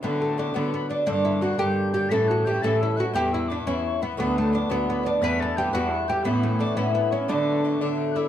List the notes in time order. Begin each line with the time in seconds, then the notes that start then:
Already playing: A3 B3 C#4 G4
0.03 A2 D3 F#3 B3 D4 B5
0.21 A3 A5
0.38 A2 F#3 B3 D4 D6
0.54 A2 D3 F#3 B3 D4 B5
0.74 B3 B5
0.89 F#3 B3 D4 D6
1.06 G2 D3 A#3 D4 E6
1.13 D6
1.25 E4
1.41 G2 D3 A#3 D4 F#4 F#6
1.58 G2 D3 A#3 D4 G4 G6
1.92 D3 A#3 D4 G4 G6
2.09 A2 E3 C#4 E4 A4 B6
2.14 A6
2.28 F#4 F#6
2.45 A2 E3 C#4 E4 G4 G6
2.61 A2 E3 C#4 E4 A4 A6
2.80 E4 E6
2.96 E3 C#4 E4 F#4 F#6
3.13 E2 G2 E3 B3 E4 G4 G6
3.33 E4 E6
3.48 G2 E3 B3 D4 E4 D6
3.65 E2 G2 E3 B3 C#4 E4 C#6
3.85 C#6
4.01 E3 B3 E4 B5
4.17 D2 A2 F#3 B3 D4 C#6
4.21 B5
4.36 A3 A5
4.52 A2 F#3 B3 D4 D6
4.69 D2 A2 F#3 B3 D4 B5
4.89 B3 B5
5.03 F#3 B3 D4 D6
5.21 E2 G2 E3 B3 E4 B4 B6
5.40 A4 A6
5.57 G2 E3 B3 E4 G4 G6
5.73 E2 G2 E3 B3 E4 F#4 F#6
5.92 F#4 F#6
6.08 E3 B3 E4 G4 G6
6.24 A2 E3 B3 C#4 E4 B5
6.43 A3
6.59 A2 E3 C#4 D4 E4 D6
6.76 A2 E3 B3 C#4 E4 B5
6.94 B3 B5
7.11 E3 C#4 E4 C#6
7.28 A2 D3 F#3 A3 D4 D6
7.64 A2 F#3 A3 D4
7.80 A2 D3 F#3 A3 D4
8.12 D4 F#6
8.16 F#3 A3 E4 E6